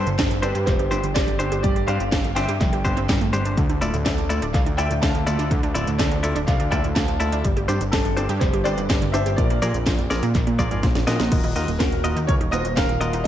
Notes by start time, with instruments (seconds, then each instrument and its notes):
Already playing: grand piano A4 C5
0.07 analog synth bass G1, synth arpeggio sound D3, closed hi-hat, cabasa
0.19 analog synth bass G1, synth arpeggio sound D4, kick, snare, clap, closed hi-hat, cabasa
0.31 analog synth bass G1, synth arpeggio sound D3, closed hi-hat, cabasa
0.42 analog synth bass G1, clean electric guitar C4 D4 G4 C5, synth arpeggio sound D4, grand piano G4 B4, closed hi-hat, cabasa
0.55 analog synth bass G2, synth arpeggio sound G4, closed hi-hat, cabasa
0.66 analog synth bass F1, synth arpeggio sound G3, grand piano G4 C5, kick, clap, closed hi-hat, cabasa
0.79 analog synth bass G1, synth arpeggio sound G4, closed hi-hat, cabasa
0.91 analog synth bass G1, clean electric guitar C4 D4 G4 C5, synth arpeggio sound D4, closed hi-hat, cabasa
1.03 analog synth bass G1, synth arpeggio sound D3, closed hi-hat, cabasa
1.14 analog synth bass G1, synth arpeggio sound D4, grand piano G4 D5, kick, snare, clap, closed hi-hat, cabasa
1.28 analog synth bass G1, synth arpeggio sound D3, closed hi-hat, cabasa
1.39 analog synth bass G1, clean electric guitar C4 D4 G4 C5, synth arpeggio sound D4, closed hi-hat, cabasa
1.52 analog synth bass G1, synth arpeggio sound G4, closed hi-hat, cabasa
1.63 analog synth bass G1, synth arpeggio sound G3, grand piano G4 D5, kick, closed hi-hat, cabasa
1.76 analog synth bass G1, synth arpeggio sound G4, closed hi-hat, cabasa
1.87 analog synth bass G2, clean electric guitar C4 D4 G4 C5, synth arpeggio sound D4, grand piano D5 F5, closed hi-hat, cabasa
2.00 analog synth bass G1, synth arpeggio sound D3, closed hi-hat, cabasa
2.12 analog synth bass G1, synth arpeggio sound D4, kick, snare, clap, closed hi-hat, cabasa
2.24 analog synth bass G1, synth arpeggio sound D3, closed hi-hat, cabasa
2.35 analog synth bass G1, clean electric guitar C4 D4 G4 C5, synth arpeggio sound D4, grand piano E5 G5, snare, closed hi-hat, cabasa
2.48 analog synth bass G2, synth arpeggio sound G4, closed hi-hat, cabasa
2.61 analog synth bass F1, synth arpeggio sound G3, kick, clap, closed hi-hat, cabasa
2.73 analog synth bass G1, synth arpeggio sound G4, closed hi-hat, cabasa
2.85 analog synth bass G1, synth arpeggio sound B3, clean electric guitar C4 D4 G4 C5, kick, closed hi-hat, cabasa
2.97 analog synth bass G1, synth arpeggio sound C4, closed hi-hat, cabasa
3.09 analog synth bass G1, synth arpeggio sound G3, kick, snare, clap, closed hi-hat, cabasa
3.21 analog synth bass G1, synth arpeggio sound A3, closed hi-hat, cabasa
3.33 analog synth bass G1, synth arpeggio sound G3, clean electric guitar C4 D4 G4 C5, closed hi-hat, cabasa
3.45 analog synth bass G1, synth arpeggio sound D4, closed hi-hat, cabasa
3.57 analog synth bass D2, synth arpeggio sound D3, kick, closed hi-hat, cabasa
3.69 analog synth bass D2, synth arpeggio sound D4, closed hi-hat, cabasa
3.81 analog synth bass D1, synth arpeggio sound A3, clean electric guitar E4 F4 A4 D5, closed hi-hat, cabasa
3.94 analog synth bass D2, synth arpeggio sound A2, closed hi-hat, cabasa
4.04 analog synth bass D2, synth arpeggio sound A3, grand piano A4 D5, kick, snare, clap, closed hi-hat, cabasa
4.18 analog synth bass D2, synth arpeggio sound A2, closed hi-hat, cabasa
4.29 analog synth bass D2, synth arpeggio sound A3, clean electric guitar E4 F4 A4 D5, closed hi-hat, cabasa
4.42 analog synth bass D1, synth arpeggio sound D4, closed hi-hat, cabasa
4.53 analog synth bass C2, synth arpeggio sound D3, grand piano D5 F5, kick, clap, closed hi-hat, cabasa
4.66 analog synth bass D2, synth arpeggio sound D4, closed hi-hat, cabasa
4.77 analog synth bass D2, synth arpeggio sound A3, clean electric guitar E4 F4 A4 D5, grand piano E5 G5, closed hi-hat, cabasa
4.90 analog synth bass D2, synth arpeggio sound A2, closed hi-hat, cabasa
5.01 analog synth bass D2, synth arpeggio sound A3, grand piano F5 A5, kick, snare, clap, closed hi-hat, cabasa
5.15 analog synth bass D2, synth arpeggio sound A2, closed hi-hat, cabasa
5.27 analog synth bass D2, synth arpeggio sound A3, clean electric guitar E4 F4 A4 D5, closed hi-hat, cabasa
5.39 analog synth bass D2, synth arpeggio sound D4, closed hi-hat, cabasa
5.51 analog synth bass D2, synth arpeggio sound D3, kick, closed hi-hat, cabasa
5.63 analog synth bass D2, synth arpeggio sound D4, closed hi-hat, cabasa
5.75 analog synth bass D1, synth arpeggio sound A3, clean electric guitar E4 F4 A4 D5, closed hi-hat, cabasa
5.87 analog synth bass D2, synth arpeggio sound A2, closed hi-hat, cabasa
5.98 analog synth bass D2, synth arpeggio sound A3, grand piano A4 D5, kick, snare, clap, closed hi-hat, cabasa
6.11 analog synth bass D2, synth arpeggio sound A2, closed hi-hat, cabasa
6.23 analog synth bass D2, synth arpeggio sound A3, clean electric guitar E4 F4 A4 D5, closed hi-hat, cabasa
6.36 analog synth bass D1, synth arpeggio sound D4, closed hi-hat, cabasa
6.47 analog synth bass C2, synth arpeggio sound D3, grand piano D5 F5, kick, clap, closed hi-hat, cabasa
6.60 analog synth bass D2, synth arpeggio sound D4, closed hi-hat, cabasa
6.71 analog synth bass D2, synth arpeggio sound A3, clean electric guitar E4 F4 A4 D5, grand piano E5 G5, kick, closed hi-hat, cabasa
6.84 analog synth bass D2, synth arpeggio sound A2, closed hi-hat, cabasa
6.95 analog synth bass D2, synth arpeggio sound A3, grand piano F5 A5, kick, snare, clap, closed hi-hat, cabasa
7.08 analog synth bass D2, synth arpeggio sound A2, closed hi-hat, cabasa
7.20 analog synth bass D2, synth arpeggio sound A3, clean electric guitar E4 F4 A4 D5, closed hi-hat, cabasa
7.32 analog synth bass D2, synth arpeggio sound D4, closed hi-hat, cabasa
7.44 analog synth bass G1, synth arpeggio sound G3, kick, closed hi-hat, cabasa
7.57 analog synth bass G1, synth arpeggio sound G4, closed hi-hat, cabasa
7.68 analog synth bass G2, clean electric guitar C4 D4 G4 C5, synth arpeggio sound D4, closed hi-hat, cabasa
7.81 analog synth bass G1, synth arpeggio sound D3, closed hi-hat, cabasa
7.91 analog synth bass G1, synth arpeggio sound D4, grand piano D4 A4, kick, snare, clap, closed hi-hat, cabasa
8.05 analog synth bass G1, synth arpeggio sound D3, closed hi-hat, cabasa
8.17 analog synth bass G1, clean electric guitar C4 D4 G4 C5, synth arpeggio sound D4, closed hi-hat, cabasa
8.29 analog synth bass G2, synth arpeggio sound G4, closed hi-hat, cabasa
8.40 analog synth bass F1, synth arpeggio sound G3, grand piano G4 C5, kick, clap, closed hi-hat, cabasa
8.53 analog synth bass G1, synth arpeggio sound G4, closed hi-hat, cabasa
8.64 analog synth bass G1, clean electric guitar C4 D4 G4 C5, synth arpeggio sound D4, grand piano B4 D5, closed hi-hat, cabasa
8.78 analog synth bass G1, synth arpeggio sound D3, closed hi-hat, cabasa
8.90 analog synth bass G1, synth arpeggio sound D4, kick, snare, clap, closed hi-hat, cabasa
9.02 analog synth bass G1, synth arpeggio sound D3, closed hi-hat, cabasa
9.12 analog synth bass G1, clean electric guitar C4 D4 G4 C5, synth arpeggio sound D4, grand piano C5 E5, closed hi-hat, cabasa
9.26 analog synth bass G1, synth arpeggio sound G4, closed hi-hat, cabasa
9.36 analog synth bass A#1, synth arpeggio sound A#2, grand piano A#4 D5, kick, closed hi-hat, cabasa
9.50 analog synth bass A#1, synth arpeggio sound A#3, closed hi-hat, cabasa
9.62 analog synth bass A#2, synth arpeggio sound F3, clean electric guitar F4 G#4 A#4 D5, closed hi-hat, cabasa
9.74 analog synth bass A#1, synth arpeggio sound F2, closed hi-hat, cabasa
9.86 analog synth bass A#1, synth arpeggio sound F3, kick, snare, clap, closed hi-hat, cabasa
9.99 analog synth bass A#1, synth arpeggio sound F2, closed hi-hat, cabasa
10.10 analog synth bass A#1, synth arpeggio sound F3, clean electric guitar F4 G#4 A#4 D5, snare, closed hi-hat, cabasa
10.23 analog synth bass A#2, synth arpeggio sound A#3, closed hi-hat, cabasa
10.35 analog synth bass A#1, synth arpeggio sound A#2, kick, clap, closed hi-hat, cabasa
10.47 analog synth bass A#2, synth arpeggio sound A#3, closed hi-hat, cabasa
10.59 analog synth bass A#1, synth arpeggio sound F3, clean electric guitar F4 G#4 A#4 D5, kick, closed hi-hat, cabasa
10.71 analog synth bass G#1, synth arpeggio sound F2, clean electric guitar F4 G#4 A#4 D5, closed hi-hat, cabasa
10.83 analog synth bass A#1, synth arpeggio sound F3, kick, snare, closed hi-hat, cabasa
10.95 analog synth bass A#1, synth arpeggio sound F2, snare, closed hi-hat, cabasa
11.07 analog synth bass A#2, synth arpeggio sound F3, clean electric guitar F4 F#4 A#4 D#5, snare, closed hi-hat, cabasa
11.20 analog synth bass A#1, synth arpeggio sound A#3, snare, closed hi-hat, cabasa
11.32 analog synth bass D#1, synth arpeggio sound D#3, kick, closed hi-hat, crash, cabasa
11.44 analog synth bass D#1, synth arpeggio sound D#4, closed hi-hat, cabasa
11.56 analog synth bass D#2, synth arpeggio sound A#3, clean electric guitar F4 F#4 A#4 D#5, closed hi-hat, cabasa
11.68 analog synth bass D#1, synth arpeggio sound A#2, closed hi-hat, cabasa
11.79 analog synth bass D#1, synth arpeggio sound A#3, grand piano F#4 A#4, kick, snare, clap, closed hi-hat, cabasa
11.92 analog synth bass D#1, synth arpeggio sound A#2, closed hi-hat, cabasa
12.04 analog synth bass D#1, synth arpeggio sound A#3, clean electric guitar F4 F#4 A#4 D#5, closed hi-hat, cabasa
12.16 analog synth bass D#2, synth arpeggio sound D#4, closed hi-hat, cabasa
12.27 analog synth bass C#2, synth arpeggio sound D#3, grand piano A#4 C#5, kick, closed hi-hat, cabasa
12.40 analog synth bass D#1, synth arpeggio sound D#4, closed hi-hat, cabasa
12.51 analog synth bass D#1, synth arpeggio sound A#3, clean electric guitar F4 F#4 A#4 D#5, grand piano C5 D#5, closed hi-hat, cabasa
12.65 analog synth bass D#1, synth arpeggio sound A#2, closed hi-hat, cabasa
12.76 analog synth bass D#1, synth arpeggio sound A#3, grand piano A#4 F5, kick, snare, clap, closed hi-hat, cabasa
12.89 analog synth bass D#1, synth arpeggio sound A#2, closed hi-hat, cabasa
13.01 analog synth bass D#1, synth arpeggio sound A#3, clean electric guitar F4 F#4 A#4 D#5, closed hi-hat, cabasa
13.13 analog synth bass D#1, synth arpeggio sound D#4, closed hi-hat, cabasa
13.24 grand piano D#5